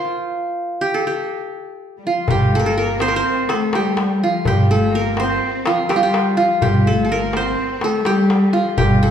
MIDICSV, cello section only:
0, 0, Header, 1, 2, 480
1, 0, Start_track
1, 0, Tempo, 481541
1, 110, Time_signature, 9, 3, 24, 8
1, 9078, End_track
2, 0, Start_track
2, 0, Title_t, "Cello section"
2, 0, Program_c, 0, 48
2, 1967, Note_on_c, 0, 55, 45
2, 2031, Note_on_c, 0, 53, 64
2, 2033, Note_off_c, 0, 55, 0
2, 2275, Note_off_c, 0, 53, 0
2, 2276, Note_on_c, 0, 55, 78
2, 2501, Note_off_c, 0, 55, 0
2, 2524, Note_on_c, 0, 57, 76
2, 2626, Note_off_c, 0, 57, 0
2, 2638, Note_on_c, 0, 57, 67
2, 2750, Note_off_c, 0, 57, 0
2, 2755, Note_on_c, 0, 58, 80
2, 2992, Note_on_c, 0, 60, 75
2, 2998, Note_off_c, 0, 58, 0
2, 3129, Note_off_c, 0, 60, 0
2, 3141, Note_on_c, 0, 60, 76
2, 3457, Note_off_c, 0, 60, 0
2, 3471, Note_on_c, 0, 57, 70
2, 3716, Note_off_c, 0, 57, 0
2, 3720, Note_on_c, 0, 55, 75
2, 4200, Note_off_c, 0, 55, 0
2, 4202, Note_on_c, 0, 53, 81
2, 4435, Note_on_c, 0, 55, 75
2, 4441, Note_off_c, 0, 53, 0
2, 4660, Note_off_c, 0, 55, 0
2, 4671, Note_on_c, 0, 57, 77
2, 4904, Note_on_c, 0, 58, 81
2, 4915, Note_off_c, 0, 57, 0
2, 5149, Note_on_c, 0, 60, 82
2, 5151, Note_off_c, 0, 58, 0
2, 5633, Note_off_c, 0, 60, 0
2, 5638, Note_on_c, 0, 53, 73
2, 5878, Note_off_c, 0, 53, 0
2, 5886, Note_on_c, 0, 55, 77
2, 5999, Note_off_c, 0, 55, 0
2, 6011, Note_on_c, 0, 55, 70
2, 6330, Note_off_c, 0, 55, 0
2, 6350, Note_on_c, 0, 53, 74
2, 6593, Note_off_c, 0, 53, 0
2, 6602, Note_on_c, 0, 55, 79
2, 6825, Note_on_c, 0, 57, 74
2, 6839, Note_off_c, 0, 55, 0
2, 7064, Note_on_c, 0, 58, 79
2, 7070, Note_off_c, 0, 57, 0
2, 7294, Note_on_c, 0, 60, 80
2, 7309, Note_off_c, 0, 58, 0
2, 7783, Note_on_c, 0, 57, 77
2, 7784, Note_off_c, 0, 60, 0
2, 8022, Note_on_c, 0, 55, 78
2, 8028, Note_off_c, 0, 57, 0
2, 8502, Note_on_c, 0, 53, 83
2, 8506, Note_off_c, 0, 55, 0
2, 8741, Note_on_c, 0, 55, 82
2, 8747, Note_off_c, 0, 53, 0
2, 8981, Note_on_c, 0, 57, 74
2, 8986, Note_off_c, 0, 55, 0
2, 9078, Note_off_c, 0, 57, 0
2, 9078, End_track
0, 0, End_of_file